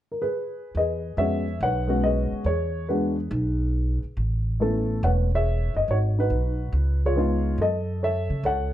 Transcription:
0.12 upright piano A#4
0.22 upright piano G#4 B4
0.75 upright bass E2, upright piano G#4 B4 D#5
1.17 upright bass F2, upright piano G#3 B3 C#4 F#4 G#4 C#5 E5
1.61 upright bass B1, upright piano B4 C#5 F#5
1.88 upright piano G#3 B3 C#4 F#4
2.04 upright piano G#4 B4 D#5
2.32 muted upright bass stroke
2.44 upright bass E2, upright piano G#4 C#5
2.89 upright piano G#3 B3 D4 F#4 G#4 B4
3.31 upright bass B1
4.03 muted upright bass stroke
4.17 upright bass A1
4.60 upright piano A3 B3 C#4 E4 A4
5.03 upright bass E1, upright piano B4 C#5 F#5
5.35 upright piano G#4 C#5 E5
5.74 upright bass F#1, upright piano D#5
5.88 upright bass G#1, upright piano F#4 C#5
6.19 upright piano D#4 F#4 B4
6.30 upright bass B1
6.73 upright bass C#2
7.06 upright piano F4 G#4 C#5
7.16 upright piano G#3 B3 D#4 F4
7.58 upright bass F#2, upright piano A4
7.62 upright piano D#5
8.03 upright piano A4 C#5 E5
8.30 upright bass C#3
8.43 upright bass C#2, upright piano A4 C#5 F#5

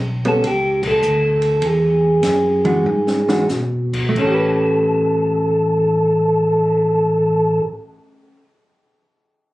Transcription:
Already playing: tonewheel organ B1
0.25 hollow-body jazz guitar G3 B3 C#4, tonewheel organ A4, ride
0.44 tonewheel organ C#2 G4, kick, ride
0.83 kick, crash
0.87 tonewheel organ A4
1.02 tonewheel organ D2, hi-hat pedal
1.42 ride
1.61 tonewheel organ E2, kick, ride
1.66 tonewheel organ G#4
2.23 tonewheel organ F#2, kick, snare, hi-hat pedal, ride
2.65 hollow-body jazz guitar E3 G#3 D4 F#4, ride
2.85 tonewheel organ G#2, high tom
3.07 snare
3.28 hollow-body jazz guitar E3 G#3 D4 F#4, snare
3.49 tonewheel organ B2, snare, hi-hat pedal
3.93 kick, crash
4.09 hollow-body jazz guitar A3
4.15 tonewheel organ A1 A4, hollow-body jazz guitar C#4, kick, crash
4.27 hollow-body jazz guitar G4
4.34 hollow-body jazz guitar B4
4.60 cymbal swell

